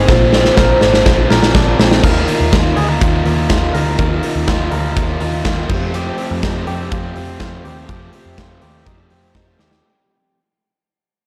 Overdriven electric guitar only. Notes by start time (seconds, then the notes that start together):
0.08 A#2 D3 A#3 C4 F4
0.32 A#3 C4 F4
0.56 A#2 D3 A#3 C4 F4
0.81 A#3 C4 F4
1.05 D3 A#3 C4 F4
1.30 A#3 C4 F4
1.54 A#2 D3 A#3 C4 F4
1.78 A#3 C4 F4
2.03 D#3 A#3 D#4 F4
2.27 A#3 D#4 F4
2.51 D#3 A#3 D#4 F4
2.76 A#3 D#4 F4
3.01 D#3 A#3 D#4 F4
3.25 A#3 D#4 F4
3.50 D#3 A#3 D#4 F4
3.74 A#3 D#4 F4
3.99 D#3 A#3 D#4 F4
4.22 A#3 D#4 F4
4.47 D#3 A#3 D#4 F4
4.71 A#3 D#4 F4
4.96 D#3 A#3 D#4 F4
5.20 A#3 D#4 F4
5.45 D#3 A#3 D#4 F4
5.69 A3 C4 G4
5.93 F3 A3 C4 G4
6.17 A3 C4 G4
6.42 F3 A3 C4 G4
6.67 A3 C4 G4
6.90 F3 A3 C4 G4
7.16 A3 C4 G4
7.39 F3 A3 C4 G4
7.64 A3 C4 G4
7.89 F3 A3 C4 G4
8.14 A3 C4 G4
8.38 F3 A3 C4 G4
8.62 A3 C4 G4
8.86 F3 A3 C4 G4
9.11 A3 C4 G4
9.35 F3 A3 C4 G4
9.59 A3 C4 G4